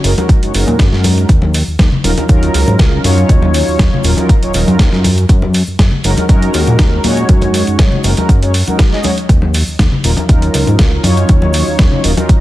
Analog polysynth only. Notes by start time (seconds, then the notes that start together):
0.04 G#3 C#4 D#4 F#4 A#4
0.17 G#3 C#4 D#4 F#4 A#4
0.42 G#3 C#4 D#4 F#4 C#5
0.53 G#3 C#4 D#4 F#4 A#4
2.03 F#3 C#4 D#4 F4 A#4
2.17 F#3 C#4 D#4 F4 A#4
2.28 F#3 C#4 D#4 F4 A#4
3.03 F#3 C#4 D#4 F4 C#5
4.03 F#3 C#4 D#4 F4 A#4
4.17 F#3 C#4 D#4 F4 A#4
4.42 F#3 C#4 D#4 F4 C#5
4.54 F#3 C#4 D#4 F4 A#4
6.04 G#3 C#4 D#4 F#4 A#4
6.17 G#3 C#4 D#4 F#4 A#4
6.28 G#3 C#4 D#4 F#4 A#4
7.03 G#3 C#4 D#4 F#4 C#5
8.03 G#3 C#4 D#4 F#4 A#4
8.17 G#3 C#4 D#4 F#4 A#4
8.42 G#3 C#4 D#4 F#4 C#5
8.67 G#3 C#4 D#4 F#4 A#4
8.92 G#3 C#4 D#4 F#4 D#5
9.03 G#3 C#4 D#4 F#4 C#5
10.03 F#3 C#4 D#4 F4 A#4
10.17 F#3 C#4 D#4 F4 A#4
10.28 F#3 C#4 D#4 F4 A#4
11.03 F#3 C#4 D#4 F4 C#5
12.03 F#3 C#4 D#4 F4 A#4
12.16 F#3 C#4 D#4 F4 A#4